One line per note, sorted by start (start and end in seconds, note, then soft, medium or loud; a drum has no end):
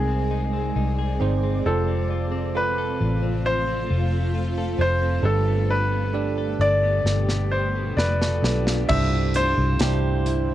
0.00 0.72 C2 medium
0.00 1.74 C3 medium
0.00 1.62 G#3 medium
0.00 0.67 C4 medium
0.00 5.20 C4 medium
0.00 0.30 D#4 soft
0.00 0.67 D#4 medium
0.00 0.68 G#4 medium
0.00 0.97 G#4 medium
0.00 1.17 G#4 medium
0.00 0.68 A#4 medium
0.00 1.64 D5 medium
0.08 0.53 C4 soft
0.31 0.75 D#4 soft
0.53 1.43 C4 soft
0.76 1.17 C2 medium
0.76 1.20 D#4 soft
0.99 1.75 G#4 medium
1.20 1.62 G1 medium
1.20 1.63 C4 medium
1.20 1.63 D#4 medium
1.20 1.75 D#4 soft
1.20 1.63 G#4 medium
1.20 1.64 C5 medium
1.43 1.87 C4 soft
1.66 2.97 F1 medium
1.66 2.97 C3 medium
1.66 3.44 F3 medium
1.66 8.86 A3 medium
1.66 2.51 C4 medium
1.66 2.52 F4 medium
1.66 5.21 F4 medium
1.66 2.52 A4 medium
1.66 2.52 C5 medium
1.88 2.30 C4 soft
2.10 2.54 F4 soft
2.32 3.22 C4 medium
2.55 4.25 C4 medium
2.55 4.25 F4 medium
2.55 3.00 F4 medium
2.55 4.26 A4 medium
2.55 3.49 B4 medium
2.78 4.57 A4 medium
3.01 3.86 A1 medium
3.01 3.89 F4 soft
3.23 3.66 C4 medium
3.46 5.33 F3 medium
3.46 4.80 C5 medium
3.68 4.11 C4 soft
3.90 4.75 F1 medium
3.90 4.34 F4 soft
4.12 5.01 C4 soft
4.35 4.78 F4 soft
4.58 5.51 A4 medium
4.78 5.21 F1 medium
4.78 5.21 C4 medium
4.78 5.22 F4 medium
4.78 5.33 F4 soft
4.78 5.22 A4 soft
4.78 5.22 C5 medium
4.78 5.26 C5 medium
5.02 5.33 C4 soft
5.22 6.56 G1 medium
5.22 6.55 G2 soft
5.22 7.04 G2 medium
5.22 8.86 B2 medium
5.22 6.56 D3 medium
5.22 6.09 D4 medium
5.22 6.10 G4 medium
5.22 7.04 G4 medium
5.22 6.10 A4 medium
5.22 5.71 A4 medium
5.22 6.10 B4 medium
5.48 5.91 B3 soft
5.70 6.15 D4 soft
5.70 6.64 B4 medium
5.92 6.82 B3 soft
6.13 7.87 D4 medium
6.13 6.60 D4 medium
6.13 7.88 G4 medium
6.13 7.88 A4 medium
6.13 7.88 D5 medium
6.38 8.20 A4 medium
6.59 7.02 G1 medium
6.59 7.52 D4 soft
6.59 7.54 D5 loud
6.83 7.28 B3 medium
7.04 7.93 G1 medium
7.04 8.99 G2 medium
7.04 8.88 F4 medium
7.04 snare soft
7.29 7.74 B3 soft
7.29 snare soft
7.51 7.98 D4 soft
7.51 7.99 C5 medium
7.75 8.66 B3 soft
7.97 8.40 F1 medium
7.97 8.44 D4 soft
7.97 8.63 B4 medium
7.97 8.92 D5 medium
7.97 snare medium
8.21 8.99 A4 soft
8.21 snare medium
8.42 8.86 B1 medium
8.42 8.87 D4 medium
8.42 9.36 D4 soft
8.42 8.88 G4 soft
8.42 8.88 A4 soft
8.42 8.88 B4 medium
8.42 snare medium
8.67 8.99 B3 soft
8.67 snare medium
8.89 9.54 C2 loud
8.89 10.22 G2 medium
8.89 10.54 D3 medium
8.89 10.54 C4 medium
8.89 9.76 D4 medium
8.89 9.76 E4 medium
8.89 10.54 E4 medium
8.89 9.76 G4 medium
8.89 9.77 C5 medium
8.89 9.36 E5 medium
8.89 kick loud
8.89 crash medium
9.34 10.54 D4 medium
9.34 10.54 C5 loud
9.34 closed hi-hat medium
9.57 9.79 C2 medium
9.79 10.54 C2 loud
9.79 10.54 D4 medium
9.79 10.54 E4 medium
9.79 10.54 G4 medium
9.79 10.54 C5 medium
9.79 snare loud
9.79 closed hi-hat medium
10.26 10.54 E4 medium
10.26 closed hi-hat medium